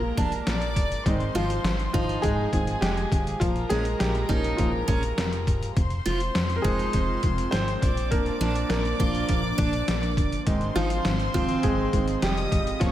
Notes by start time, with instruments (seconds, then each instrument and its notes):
Already playing: analog synth bass A#1, grand piano F3 G3 G#3 A#3 D4 F4 G4 G#4 A#4, violin section A#4 A#5
0.17 analog synth bass A#1, steel-string acoustic guitar D4, kick, closed hi-hat
0.32 closed hi-hat
0.47 analog synth bass A#1, violin section D5 D6, snare, closed hi-hat
0.62 closed hi-hat
0.76 analog synth bass G1, kick, closed hi-hat
0.92 closed hi-hat
1.06 analog synth bass G#1, grand piano D#3 G#3 C4 D#4, violin section C5 C6, kick, closed hi-hat
1.20 closed hi-hat
1.35 analog synth bass G#1, grand piano F3 F4, steel-string acoustic guitar F4, snare, closed hi-hat
1.50 closed hi-hat
1.64 analog synth bass G#1, snare, closed hi-hat
1.79 closed hi-hat
1.93 analog synth bass G#1, grand piano F3 F4, steel-string acoustic guitar D#4, kick, closed hi-hat
2.09 closed hi-hat
2.22 analog synth bass G#1, grand piano G#3 G#4, violin section G#4 G#5, kick, closed hi-hat
2.52 analog synth bass G#1, grand piano D#3 G#3 C4, kick, closed hi-hat
2.67 closed hi-hat
2.81 analog synth bass F1, grand piano G#3 G4, snare, closed hi-hat
2.97 closed hi-hat
3.12 analog synth bass G#1, kick, closed hi-hat
3.27 closed hi-hat
3.40 analog synth bass A#1, grand piano F3 F4, violin section A#4 A#5, kick, closed hi-hat
3.56 closed hi-hat
3.69 analog synth bass A#1, grand piano G#3 G#4, steel-string acoustic guitar C#4, snare, closed hi-hat
3.85 closed hi-hat
3.99 analog synth bass A#1, grand piano G3 G4, snare, closed hi-hat
4.15 closed hi-hat
4.28 analog synth bass A#1, grand piano F3 A#3 C#4, steel-string acoustic guitar D#4, kick, closed hi-hat
4.44 closed hi-hat
4.57 analog synth bass A#1, grand piano F3 F4, kick, closed hi-hat
4.88 analog synth bass A#1, steel-string acoustic guitar C#4, kick, closed hi-hat
5.03 closed hi-hat
5.18 analog synth bass F1, snare, closed hi-hat
5.33 closed hi-hat
5.47 analog synth bass G1, kick, closed hi-hat
5.63 closed hi-hat
5.77 analog synth bass F1, analog synth pad G#3 C4 F4, violin section C5 C6, kick, closed hi-hat
5.90 closed hi-hat
6.06 analog synth bass F1, steel-string acoustic guitar F4, snare, closed hi-hat
6.20 closed hi-hat
6.35 analog synth bass F1, snare, closed hi-hat
6.50 closed hi-hat
6.56 grand piano A#4
6.62 analog synth bass F1, grand piano F3 G#3 C4 G#4, steel-string acoustic guitar D#4, kick, closed hi-hat
6.79 closed hi-hat
6.93 analog synth bass F1, kick, closed hi-hat
7.23 analog synth bass F1, kick, closed hi-hat
7.38 closed hi-hat
7.51 analog synth bass G#1, grand piano C4 C5, snare, closed hi-hat
7.68 closed hi-hat
7.82 analog synth bass A#1, analog synth pad F3 A#3 D4, violin section D5 D6, kick, closed hi-hat
7.97 closed hi-hat
8.11 grand piano F3 A#3 D4 A#4, kick, closed hi-hat
8.26 closed hi-hat
8.41 analog synth bass A#1, steel-string acoustic guitar D4, snare, closed hi-hat
8.56 closed hi-hat
8.69 analog synth bass A#1, grand piano A#3 A#4, snare, closed hi-hat
8.85 closed hi-hat
9.00 analog synth bass A#1, steel-string acoustic guitar F4, kick, closed hi-hat
9.15 closed hi-hat
9.29 analog synth bass A#1, kick, closed hi-hat
9.58 analog synth bass A#1, steel-string acoustic guitar D4, kick, closed hi-hat
9.73 closed hi-hat
9.88 analog synth bass A#1, snare, closed hi-hat
10.03 closed hi-hat
10.17 analog synth bass G1, kick, closed hi-hat
10.32 closed hi-hat
10.46 analog synth bass G#1, grand piano D#3 G#3 C4 D#4, analog synth pad D#3 C4, violin section C5 C6, kick, closed hi-hat
10.61 closed hi-hat
10.76 analog synth bass G#1, grand piano F3 F4, steel-string acoustic guitar D#4, snare, closed hi-hat
10.90 closed hi-hat
11.05 analog synth bass G#1, snare, closed hi-hat
11.20 closed hi-hat
11.34 analog synth bass G#1, grand piano F3 F4, steel-string acoustic guitar C4, kick, closed hi-hat
11.49 closed hi-hat
11.63 analog synth bass G#1, grand piano G#3 G#4, kick, closed hi-hat
11.93 analog synth bass G#1, grand piano D#3 G#3 C4, kick, closed hi-hat
12.08 closed hi-hat
12.22 analog synth bass F1, grand piano G3 G4, violin section D#5 D#6, snare, closed hi-hat
12.38 closed hi-hat
12.52 analog synth bass G#1, kick, closed hi-hat
12.67 closed hi-hat
12.80 analog synth bass A#1, analog synth pad C#3 F3 A#3, grand piano F3 A#3 C#4 F4, violin section C#5 C#6, kick, snare, closed hi-hat